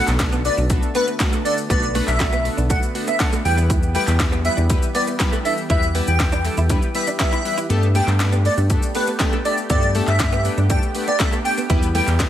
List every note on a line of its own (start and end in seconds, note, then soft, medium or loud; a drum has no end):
0.00 3.41 D3 medium
0.00 0.11 A3 loud
0.00 3.41 A3 medium
0.00 0.11 B3 loud
0.00 7.66 B3 medium
0.00 0.11 D4 medium
0.00 0.11 F#4 medium
0.00 0.11 A4 loud
0.07 0.49 B1 loud
0.07 clap medium
0.07 shaker medium
0.19 0.36 A3 medium
0.19 0.36 B3 medium
0.19 0.36 D4 medium
0.19 0.36 F#4 medium
0.19 0.36 A4 loud
0.19 kick loud
0.19 snare loud
0.19 clap medium
0.19 clap loud
0.19 closed hi-hat medium
0.19 shaker medium
0.32 0.41 B3 medium
0.32 shaker medium
0.45 0.61 A3 medium
0.45 0.61 B3 medium
0.45 0.61 D4 medium
0.45 0.61 F#4 medium
0.45 0.61 B4 medium
0.45 0.53 D5 medium
0.45 muted clean electric guitar stroke soft
0.45 open hi-hat medium
0.45 shaker medium
0.57 0.78 B1 medium
0.57 0.65 D4 medium
0.57 shaker medium
0.70 0.86 A3 medium
0.70 0.86 B3 medium
0.70 0.86 D4 medium
0.70 0.86 F#4 medium
0.70 0.86 A4 loud
0.70 muted clean electric guitar stroke soft
0.70 kick loud
0.70 closed hi-hat medium
0.70 shaker medium
0.83 shaker medium
0.95 1.11 A3 medium
0.95 1.11 B3 medium
0.95 1.03 B3 medium
0.95 1.11 D4 medium
0.95 1.11 F#4 medium
0.95 1.03 B4 medium
0.95 1.11 B4 medium
0.95 open hi-hat medium
0.95 shaker medium
1.07 1.16 B3 medium
1.07 shaker medium
1.20 1.36 A3 loud
1.20 1.36 B3 loud
1.20 1.36 D4 loud
1.20 1.36 F#4 loud
1.20 1.36 A4 loud
1.20 kick loud
1.20 snare medium
1.20 clap medium
1.20 clap loud
1.20 closed hi-hat medium
1.20 shaker medium
1.33 1.41 A3 medium
1.33 shaker medium
1.45 1.61 A3 medium
1.45 1.61 B3 medium
1.45 1.61 D4 medium
1.45 1.53 D4 medium
1.45 1.61 F#4 medium
1.45 1.61 A4 medium
1.45 1.53 D5 medium
1.45 open hi-hat medium
1.45 shaker medium
1.58 shaker medium
1.70 2.01 B1 loud
1.70 1.86 A3 loud
1.70 1.86 B3 medium
1.70 1.78 B3 medium
1.70 1.86 D4 medium
1.70 1.86 F#4 medium
1.70 1.86 B4 loud
1.70 1.87 D5 loud
1.70 kick loud
1.70 closed hi-hat medium
1.70 shaker medium
1.83 muted clean electric guitar stroke soft
1.83 shaker medium
1.95 2.11 A3 loud
1.95 2.03 A3 medium
1.95 2.11 B3 medium
1.95 2.11 D4 loud
1.95 2.11 F#4 loud
1.95 2.11 B4 loud
1.95 open hi-hat medium
1.95 shaker medium
2.08 2.49 B1 loud
2.08 2.43 E5 medium
2.08 clap medium
2.08 shaker medium
2.20 2.36 A3 medium
2.20 2.36 B3 medium
2.20 2.36 D4 medium
2.20 2.36 F#4 medium
2.20 2.36 A4 medium
2.20 kick loud
2.20 snare loud
2.20 clap medium
2.20 clap loud
2.20 closed hi-hat medium
2.20 shaker medium
2.32 2.41 B3 medium
2.32 shaker medium
2.44 2.61 A3 medium
2.44 2.61 B3 medium
2.44 2.61 D4 medium
2.44 2.61 F#4 medium
2.44 2.61 A4 medium
2.44 muted clean electric guitar stroke soft
2.44 open hi-hat medium
2.44 shaker medium
2.57 2.78 B1 medium
2.57 2.65 D4 medium
2.57 shaker medium
2.70 2.86 A3 medium
2.70 2.86 B3 medium
2.70 2.86 D4 medium
2.70 2.78 D4 loud
2.70 2.86 F#4 medium
2.70 2.86 A4 medium
2.70 2.79 F#5 medium
2.70 kick loud
2.70 closed hi-hat medium
2.70 shaker medium
2.83 shaker medium
2.95 3.11 A3 medium
2.95 3.11 B3 medium
2.95 3.11 D4 medium
2.95 3.11 F#4 medium
2.95 3.11 A4 medium
2.95 muted clean electric guitar stroke soft
2.95 open hi-hat medium
2.95 shaker medium
3.08 3.16 B3 medium
3.08 3.16 E5 medium
3.08 shaker medium
3.20 3.36 A3 loud
3.20 3.36 B3 medium
3.20 3.36 D4 loud
3.20 3.36 F#4 medium
3.20 3.36 A4 loud
3.20 3.28 F#5 medium
3.20 kick loud
3.20 snare medium
3.20 clap medium
3.20 clap loud
3.20 closed hi-hat medium
3.20 shaker medium
3.33 3.41 A3 medium
3.33 shaker medium
3.45 3.97 E2 loud
3.45 7.66 E3 medium
3.45 3.85 G3 medium
3.45 3.85 B3 medium
3.45 3.85 E4 medium
3.45 3.85 G4 medium
3.45 12.29 G4 loud
3.45 3.85 B4 medium
3.45 3.53 G5 medium
3.45 muted clean electric guitar stroke soft
3.45 open hi-hat medium
3.45 shaker medium
3.57 3.65 B3 medium
3.57 shaker medium
3.70 3.78 E4 loud
3.70 kick loud
3.70 closed hi-hat medium
3.70 shaker medium
3.83 muted clean electric guitar stroke soft
3.83 shaker medium
3.95 4.11 G3 loud
3.95 4.03 A3 medium
3.95 4.11 B3 loud
3.95 4.11 E4 medium
3.95 4.11 G4 loud
3.95 4.11 B4 loud
3.95 4.03 G5 medium
3.95 open hi-hat medium
3.95 shaker medium
4.07 4.49 E2 loud
4.07 clap medium
4.07 shaker medium
4.20 4.36 G3 medium
4.20 4.36 B3 medium
4.20 4.36 E4 medium
4.20 4.36 G4 medium
4.20 4.36 B4 loud
4.20 kick loud
4.20 snare medium
4.20 clap medium
4.20 clap loud
4.20 closed hi-hat medium
4.20 shaker medium
4.32 4.40 B3 medium
4.32 shaker medium
4.45 4.61 G3 medium
4.45 4.61 B3 medium
4.45 4.61 E4 medium
4.45 4.61 G4 medium
4.45 4.61 B4 medium
4.45 4.53 E5 medium
4.45 muted clean electric guitar stroke soft
4.45 open hi-hat medium
4.45 shaker medium
4.57 4.78 E2 medium
4.57 4.65 D4 medium
4.57 shaker medium
4.70 4.86 G3 loud
4.70 4.86 B3 medium
4.70 4.86 E4 medium
4.70 4.86 G4 medium
4.70 4.86 B4 loud
4.70 muted clean electric guitar stroke medium
4.70 kick loud
4.70 closed hi-hat medium
4.70 shaker medium
4.82 shaker medium
4.95 5.11 G3 medium
4.95 5.11 B3 medium
4.95 5.03 B3 medium
4.95 5.11 E4 medium
4.95 5.11 G4 medium
4.95 5.11 B4 medium
4.95 5.03 D5 medium
4.95 open hi-hat medium
4.95 shaker medium
5.07 5.15 B3 medium
5.07 shaker medium
5.19 5.36 G3 loud
5.19 5.36 B3 loud
5.19 5.36 E4 loud
5.19 5.36 G4 loud
5.19 5.36 B4 loud
5.19 muted clean electric guitar stroke soft
5.19 kick loud
5.19 snare medium
5.19 clap medium
5.19 clap loud
5.19 closed hi-hat medium
5.19 shaker medium
5.32 5.40 A3 medium
5.32 shaker medium
5.45 5.61 G3 medium
5.45 5.61 B3 medium
5.45 5.53 D4 medium
5.45 5.61 E4 medium
5.45 5.61 G4 medium
5.45 5.61 A4 medium
5.45 5.53 E5 medium
5.45 open hi-hat medium
5.45 shaker medium
5.57 shaker medium
5.70 6.01 E2 loud
5.70 5.86 G3 loud
5.70 5.86 B3 medium
5.70 5.86 E4 medium
5.70 5.78 E4 medium
5.70 5.86 G4 medium
5.70 5.86 B4 loud
5.70 5.87 E5 loud
5.70 kick loud
5.70 closed hi-hat medium
5.70 shaker medium
5.83 muted clean electric guitar stroke soft
5.83 shaker medium
5.95 6.11 G3 loud
5.95 6.11 B3 medium
5.95 6.03 B3 medium
5.95 6.11 E4 loud
5.95 6.11 G4 loud
5.95 6.11 B4 loud
5.95 open hi-hat medium
5.95 shaker medium
6.07 6.49 E2 medium
6.07 6.43 G5 medium
6.07 shaker medium
6.20 6.36 G3 medium
6.20 6.36 B3 medium
6.20 6.36 E4 medium
6.20 6.36 G4 medium
6.20 6.36 B4 medium
6.20 kick loud
6.20 snare loud
6.20 clap medium
6.20 clap loud
6.20 closed hi-hat medium
6.20 shaker medium
6.32 6.40 D4 medium
6.32 shaker medium
6.45 6.61 G3 medium
6.45 6.61 B3 medium
6.45 6.61 E4 medium
6.45 6.61 G4 medium
6.45 6.61 A4 medium
6.45 muted clean electric guitar stroke soft
6.45 clap medium
6.45 open hi-hat medium
6.45 shaker medium
6.57 6.78 E2 medium
6.57 6.66 E4 medium
6.57 shaker medium
6.70 6.86 G3 medium
6.70 6.86 B3 medium
6.70 6.78 D4 medium
6.70 6.86 E4 medium
6.70 6.86 G4 medium
6.70 6.86 B4 loud
6.70 kick loud
6.70 closed hi-hat medium
6.70 shaker medium
6.82 shaker medium
6.95 7.11 G3 medium
6.95 7.11 B3 medium
6.95 7.11 E4 medium
6.95 7.11 G4 medium
6.95 7.11 B4 medium
6.95 7.03 E5 medium
6.95 muted clean electric guitar stroke soft
6.95 open hi-hat medium
6.95 shaker medium
7.07 7.16 D4 medium
7.07 shaker medium
7.20 7.36 G3 loud
7.20 7.36 B3 medium
7.20 7.36 E4 loud
7.20 7.36 G4 loud
7.20 7.36 B4 loud
7.20 7.55 E5 loud
7.20 kick loud
7.20 snare medium
7.20 clap medium
7.20 clap loud
7.20 closed hi-hat medium
7.20 shaker medium
7.32 7.41 E4 medium
7.32 shaker medium
7.45 7.61 G3 medium
7.45 7.61 B3 medium
7.45 7.61 E4 medium
7.45 7.61 G4 medium
7.45 7.61 B4 medium
7.45 muted clean electric guitar stroke soft
7.45 open hi-hat medium
7.45 shaker medium
7.58 7.66 E4 medium
7.58 shaker medium
7.70 8.01 G2 loud
7.70 7.86 A3 loud
7.70 11.66 A3 medium
7.70 7.86 B3 loud
7.70 7.78 B3 medium
7.70 12.29 B3 medium
7.70 7.86 D4 loud
7.70 7.86 G4 loud
7.70 7.86 A4 loud
7.70 closed hi-hat medium
7.70 shaker medium
7.83 muted clean electric guitar stroke soft
7.83 shaker medium
7.95 8.11 A3 loud
7.95 8.03 A3 medium
7.95 8.11 B3 loud
7.95 8.11 D4 medium
7.95 8.11 G4 loud
7.95 8.11 A4 loud
7.95 8.04 G5 medium
7.95 open hi-hat medium
7.95 shaker medium
8.07 8.49 G2 loud
8.07 clap medium
8.07 shaker medium
8.20 8.36 A3 medium
8.20 8.36 B3 medium
8.20 8.36 D4 medium
8.20 8.36 G4 medium
8.20 8.36 B4 loud
8.20 snare loud
8.20 clap medium
8.20 clap loud
8.20 closed hi-hat medium
8.20 shaker medium
8.32 8.41 B3 medium
8.32 shaker medium
8.45 8.61 A3 medium
8.45 8.61 B3 medium
8.45 8.61 D4 medium
8.45 8.61 G4 medium
8.45 8.61 A4 medium
8.45 8.54 D5 medium
8.45 muted clean electric guitar stroke soft
8.45 open hi-hat medium
8.45 shaker medium
8.57 8.78 G2 loud
8.57 8.66 D4 medium
8.57 shaker medium
8.70 8.86 A3 medium
8.70 8.86 B3 medium
8.70 8.86 D4 medium
8.70 8.86 G4 medium
8.70 8.86 A4 loud
8.70 muted clean electric guitar stroke soft
8.70 kick loud
8.70 closed hi-hat medium
8.70 shaker medium
8.83 shaker medium
8.95 9.11 A3 medium
8.95 9.11 B3 medium
8.95 9.03 B3 medium
8.95 9.11 D4 medium
8.95 9.11 G4 medium
8.95 9.11 A4 medium
8.95 9.04 B4 medium
8.95 open hi-hat medium
8.95 shaker medium
9.07 9.16 B3 medium
9.07 shaker medium
9.20 9.36 A3 loud
9.20 9.36 B3 loud
9.20 9.36 D4 loud
9.20 9.36 G4 loud
9.20 9.36 A4 loud
9.20 kick loud
9.20 snare medium
9.20 clap medium
9.20 clap loud
9.20 closed hi-hat medium
9.20 shaker medium
9.33 9.41 A3 medium
9.33 shaker medium
9.45 9.61 A3 medium
9.45 9.61 B3 medium
9.45 9.61 D4 medium
9.45 9.53 D4 medium
9.45 9.61 G4 medium
9.45 9.61 A4 medium
9.45 9.53 D5 medium
9.45 open hi-hat medium
9.45 shaker medium
9.58 shaker medium
9.70 10.01 G2 loud
9.70 9.86 A3 loud
9.70 9.86 B3 loud
9.70 9.78 B3 medium
9.70 9.86 D4 medium
9.70 9.86 G4 medium
9.70 9.86 A4 loud
9.70 9.87 D5 loud
9.70 kick loud
9.70 closed hi-hat medium
9.70 shaker medium
9.83 muted clean electric guitar stroke soft
9.83 shaker medium
9.95 10.11 A3 loud
9.95 10.03 A3 medium
9.95 10.11 B3 loud
9.95 10.11 D4 medium
9.95 10.11 G4 loud
9.95 10.11 A4 loud
9.95 open hi-hat medium
9.95 shaker medium
10.07 10.49 G2 loud
10.07 10.43 E5 medium
10.07 clap medium
10.07 shaker medium
10.20 10.36 A3 medium
10.20 10.36 B3 medium
10.20 10.36 D4 medium
10.20 10.36 G4 medium
10.20 10.36 B4 medium
10.20 kick loud
10.20 snare loud
10.20 clap medium
10.20 clap loud
10.20 closed hi-hat medium
10.20 shaker medium
10.32 10.41 B3 medium
10.32 shaker medium
10.45 10.61 A3 medium
10.45 10.61 B3 medium
10.45 10.61 D4 medium
10.45 10.61 G4 medium
10.45 10.61 B4 medium
10.45 muted clean electric guitar stroke soft
10.45 open hi-hat medium
10.45 shaker medium
10.57 10.78 G2 medium
10.57 10.66 D4 medium
10.57 shaker medium
10.70 10.86 A3 medium
10.70 10.86 B3 medium
10.70 10.78 D4 loud
10.70 10.86 D4 medium
10.70 10.86 G4 medium
10.70 10.86 A4 medium
10.70 10.78 G5 medium
10.70 kick loud
10.70 closed hi-hat medium
10.70 shaker medium
10.83 shaker medium
10.95 11.11 A3 medium
10.95 11.11 B3 medium
10.95 11.11 D4 medium
10.95 11.11 G4 medium
10.95 11.11 B4 medium
10.95 muted clean electric guitar stroke soft
10.95 open hi-hat medium
10.95 shaker medium
11.07 11.16 B3 medium
11.07 11.16 D5 medium
11.07 shaker medium
11.19 11.36 A3 loud
11.19 11.36 B3 loud
11.19 11.36 D4 loud
11.19 11.36 G4 loud
11.19 11.36 A4 loud
11.19 11.28 E5 medium
11.19 kick loud
11.19 snare medium
11.19 clap medium
11.19 clap loud
11.19 closed hi-hat medium
11.19 shaker medium
11.32 11.41 A3 medium
11.32 shaker medium
11.45 11.61 A3 medium
11.45 11.61 B3 medium
11.45 11.61 D4 medium
11.45 11.61 G4 medium
11.45 11.61 A4 medium
11.45 11.53 G5 medium
11.45 muted clean electric guitar stroke soft
11.45 open hi-hat medium
11.45 shaker medium
11.58 11.66 B3 medium
11.58 shaker medium
11.70 12.01 E2 loud
11.70 12.29 E3 medium
11.70 11.86 G3 loud
11.70 11.86 B3 loud
11.70 11.86 E4 loud
11.70 11.78 E4 medium
11.70 11.86 G4 loud
11.70 11.86 B4 loud
11.70 kick loud
11.70 closed hi-hat medium
11.70 shaker medium
11.83 muted clean electric guitar stroke soft
11.83 shaker medium
11.94 12.11 G3 loud
11.94 12.03 A3 medium
11.94 12.11 B3 loud
11.94 12.11 E4 loud
11.94 12.11 G4 loud
11.94 12.11 B4 loud
11.94 12.03 G5 medium
11.94 open hi-hat medium
11.94 shaker medium
12.07 12.29 E2 loud
12.07 clap medium
12.07 shaker medium
12.20 12.29 G3 loud
12.20 12.29 B3 medium
12.20 12.29 E4 medium
12.20 12.29 G4 medium
12.20 12.29 B4 loud
12.20 kick loud
12.20 snare loud
12.20 clap medium
12.20 clap loud
12.20 closed hi-hat medium
12.20 shaker medium